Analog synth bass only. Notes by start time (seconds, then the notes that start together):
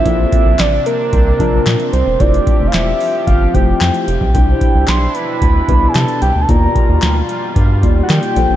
0.06 A#1
0.46 A#1
0.59 A1
1.13 C2
1.40 A#1
1.66 A#2
1.93 C2
2.07 E1
2.20 F1
2.60 F1
2.74 E1
3.27 G1
3.54 F1
3.81 F2
4.08 F1
4.21 B1
4.34 C2
4.75 C2
4.88 B1
5.42 D2
5.68 C2
5.95 C3
6.22 C2
6.36 D2
6.49 D#2
6.89 D#2
7.03 D2
7.56 G2
7.83 D#2
8.10 D#3
8.36 A#1
8.50 A1